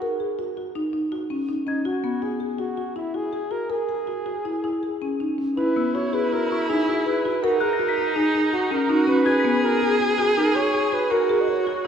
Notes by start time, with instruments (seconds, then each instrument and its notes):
Already playing: flugelhorn F#4
0.02 marimba A#4
0.20 marimba G#4
0.39 marimba F#4
0.57 marimba F#4
0.75 marimba D#4
0.93 marimba D#4
1.12 marimba F#4
1.30 marimba C#4
1.49 marimba D#4
1.67 marimba C#4, flugelhorn D#4, celesta G#6
1.85 marimba F#4, flugelhorn F#4
2.04 marimba B3
2.22 marimba F#4, flugelhorn G#4
2.40 marimba G#4
2.59 marimba F#4, flugelhorn F#4
2.77 marimba F#4
2.96 marimba E4, flugelhorn E4
3.14 marimba F#4, flugelhorn G#4
3.33 marimba G#4
3.51 marimba F#4, flugelhorn A#4
3.70 flugelhorn G#4, marimba A#4
3.89 marimba G#4
4.07 marimba F#4
4.26 marimba F#4
4.45 marimba E4
4.64 marimba E4
4.83 marimba G#4
5.02 marimba C#4
5.20 marimba D#4
5.38 marimba C#4
5.57 marimba E4, viola E4, flugelhorn B4
5.76 marimba B3, celesta E6
5.95 marimba F#4, flugelhorn C#5
6.13 marimba G#4, flugelhorn B4
6.32 marimba F#4, flugelhorn A#4
6.51 marimba F#4, celesta C#6
6.69 marimba D#4, flugelhorn G#4
6.88 marimba F#4
7.06 marimba G#4, flugelhorn B4
7.25 marimba F#4
7.43 viola D#4, flugelhorn F#4, marimba A#4
7.60 marimba G#4, flugelhorn A#4, celesta F#6
7.73 celesta A#6
7.80 marimba F#4
7.89 celesta B6
7.98 marimba F#4
8.16 marimba D#4, flugelhorn G#4
8.35 marimba D#4
8.53 marimba F#4, flugelhorn F#4
8.71 marimba C#4, flugelhorn A#4
8.89 marimba D#4, viola F#4
9.07 marimba C#4, flugelhorn B4
9.26 marimba F#4, viola G#4, celesta G#6
9.40 celesta B6
9.45 marimba B3
9.64 marimba F#4, flugelhorn A#4
9.82 marimba G#4
10.00 marimba F#4, flugelhorn G#4
10.18 marimba F#4
10.37 marimba D#4, flugelhorn A#4
10.55 marimba F#4, flugelhorn C#5
10.74 marimba G#4
10.92 marimba F#4, flugelhorn B4
11.10 viola F#4, marimba A#4, flugelhorn A#4
11.29 marimba G#4
11.42 flugelhorn D#5
11.48 marimba F#4, flugelhorn C#5
11.67 marimba F#4